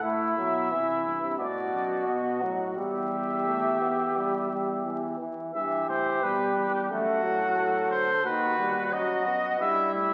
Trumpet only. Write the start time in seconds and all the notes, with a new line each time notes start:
0.03 E5
1.39 D5
2.07 D#5
2.76 E5
5.54 E5
5.89 C5
6.23 B4
6.74 G4
6.90 F#4
7.91 C5
8.25 B4
8.92 D#5
9.61 E5
9.94 E5